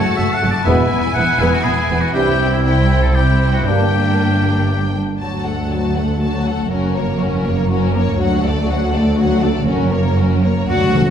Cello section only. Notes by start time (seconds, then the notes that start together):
0.18 F#2
0.42 F#2
0.66 E2
0.91 E2
1.17 E2
1.42 E2
1.66 E2
1.92 E2
2.16 C2
3.67 G2
5.20 D2
6.70 F#2
8.18 D2
9.66 F#2
10.68 D2 F#4